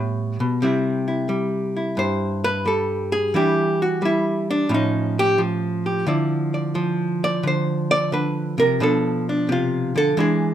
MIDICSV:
0, 0, Header, 1, 2, 480
1, 0, Start_track
1, 0, Key_signature, 0, "major"
1, 0, Tempo, 683371
1, 420, Time_signature, 4, 2, 24, 8
1, 7405, End_track
2, 0, Start_track
2, 0, Title_t, "Hollow-body jazz guitar"
2, 0, Program_c, 0, 26
2, 0, Note_on_c, 0, 45, 53
2, 0, Note_on_c, 0, 55, 44
2, 0, Note_on_c, 0, 59, 49
2, 0, Note_on_c, 0, 65, 49
2, 0, Note_on_c, 0, 71, 67
2, 272, Note_off_c, 0, 45, 0
2, 282, Note_on_c, 0, 47, 61
2, 409, Note_off_c, 0, 55, 0
2, 414, Note_off_c, 0, 59, 0
2, 415, Note_off_c, 0, 65, 0
2, 428, Note_off_c, 0, 47, 0
2, 433, Note_off_c, 0, 71, 0
2, 435, Note_on_c, 0, 48, 55
2, 441, Note_on_c, 0, 55, 39
2, 444, Note_on_c, 0, 60, 42
2, 451, Note_on_c, 0, 64, 36
2, 748, Note_off_c, 0, 64, 0
2, 757, Note_on_c, 0, 64, 37
2, 903, Note_off_c, 0, 55, 0
2, 905, Note_on_c, 0, 55, 49
2, 1232, Note_off_c, 0, 64, 0
2, 1240, Note_on_c, 0, 64, 39
2, 1384, Note_on_c, 0, 43, 56
2, 1389, Note_off_c, 0, 48, 0
2, 1397, Note_on_c, 0, 72, 69
2, 1714, Note_off_c, 0, 72, 0
2, 1717, Note_on_c, 0, 71, 91
2, 1857, Note_off_c, 0, 55, 0
2, 1865, Note_on_c, 0, 55, 54
2, 1867, Note_off_c, 0, 71, 0
2, 1879, Note_on_c, 0, 69, 65
2, 2191, Note_off_c, 0, 69, 0
2, 2193, Note_on_c, 0, 68, 80
2, 2325, Note_off_c, 0, 55, 0
2, 2330, Note_off_c, 0, 64, 0
2, 2336, Note_off_c, 0, 60, 0
2, 2343, Note_off_c, 0, 43, 0
2, 2345, Note_off_c, 0, 68, 0
2, 2346, Note_on_c, 0, 52, 63
2, 2351, Note_on_c, 0, 55, 37
2, 2355, Note_on_c, 0, 62, 43
2, 2358, Note_on_c, 0, 64, 40
2, 2361, Note_on_c, 0, 67, 65
2, 2676, Note_off_c, 0, 64, 0
2, 2676, Note_off_c, 0, 67, 0
2, 2684, Note_on_c, 0, 66, 66
2, 2814, Note_off_c, 0, 55, 0
2, 2823, Note_on_c, 0, 55, 54
2, 2830, Note_off_c, 0, 66, 0
2, 2847, Note_on_c, 0, 64, 66
2, 3156, Note_off_c, 0, 62, 0
2, 3161, Note_off_c, 0, 64, 0
2, 3165, Note_on_c, 0, 62, 71
2, 3284, Note_off_c, 0, 55, 0
2, 3287, Note_off_c, 0, 52, 0
2, 3296, Note_on_c, 0, 45, 68
2, 3302, Note_on_c, 0, 53, 43
2, 3308, Note_on_c, 0, 61, 44
2, 3311, Note_off_c, 0, 62, 0
2, 3332, Note_on_c, 0, 63, 65
2, 3643, Note_off_c, 0, 63, 0
2, 3648, Note_on_c, 0, 67, 102
2, 3777, Note_off_c, 0, 53, 0
2, 3780, Note_on_c, 0, 53, 57
2, 3793, Note_off_c, 0, 67, 0
2, 4116, Note_on_c, 0, 67, 47
2, 4242, Note_off_c, 0, 45, 0
2, 4247, Note_off_c, 0, 61, 0
2, 4260, Note_on_c, 0, 50, 61
2, 4263, Note_off_c, 0, 53, 0
2, 4266, Note_on_c, 0, 53, 40
2, 4267, Note_off_c, 0, 67, 0
2, 4268, Note_on_c, 0, 64, 43
2, 4272, Note_on_c, 0, 74, 40
2, 4592, Note_off_c, 0, 74, 0
2, 4594, Note_on_c, 0, 74, 39
2, 4739, Note_off_c, 0, 53, 0
2, 4742, Note_on_c, 0, 53, 62
2, 5083, Note_off_c, 0, 74, 0
2, 5086, Note_on_c, 0, 74, 90
2, 5213, Note_off_c, 0, 50, 0
2, 5221, Note_on_c, 0, 50, 58
2, 5232, Note_off_c, 0, 74, 0
2, 5250, Note_on_c, 0, 72, 68
2, 5553, Note_off_c, 0, 72, 0
2, 5556, Note_on_c, 0, 74, 110
2, 5697, Note_off_c, 0, 50, 0
2, 5706, Note_on_c, 0, 50, 52
2, 5707, Note_off_c, 0, 74, 0
2, 5714, Note_on_c, 0, 71, 57
2, 6023, Note_off_c, 0, 50, 0
2, 6026, Note_on_c, 0, 48, 59
2, 6034, Note_off_c, 0, 71, 0
2, 6038, Note_on_c, 0, 70, 85
2, 6167, Note_off_c, 0, 64, 0
2, 6181, Note_off_c, 0, 53, 0
2, 6182, Note_off_c, 0, 48, 0
2, 6183, Note_on_c, 0, 47, 62
2, 6188, Note_off_c, 0, 70, 0
2, 6189, Note_on_c, 0, 53, 42
2, 6194, Note_on_c, 0, 62, 47
2, 6205, Note_on_c, 0, 69, 67
2, 6518, Note_off_c, 0, 62, 0
2, 6519, Note_off_c, 0, 69, 0
2, 6527, Note_on_c, 0, 62, 45
2, 6664, Note_on_c, 0, 48, 55
2, 6672, Note_off_c, 0, 62, 0
2, 6688, Note_on_c, 0, 65, 71
2, 6989, Note_off_c, 0, 48, 0
2, 6993, Note_on_c, 0, 50, 50
2, 7001, Note_off_c, 0, 65, 0
2, 7007, Note_on_c, 0, 69, 89
2, 7124, Note_off_c, 0, 47, 0
2, 7141, Note_off_c, 0, 50, 0
2, 7144, Note_on_c, 0, 52, 66
2, 7146, Note_off_c, 0, 53, 0
2, 7152, Note_off_c, 0, 69, 0
2, 7152, Note_on_c, 0, 56, 48
2, 7156, Note_on_c, 0, 62, 44
2, 7167, Note_on_c, 0, 68, 72
2, 7405, Note_off_c, 0, 52, 0
2, 7405, Note_off_c, 0, 56, 0
2, 7405, Note_off_c, 0, 62, 0
2, 7405, Note_off_c, 0, 68, 0
2, 7405, End_track
0, 0, End_of_file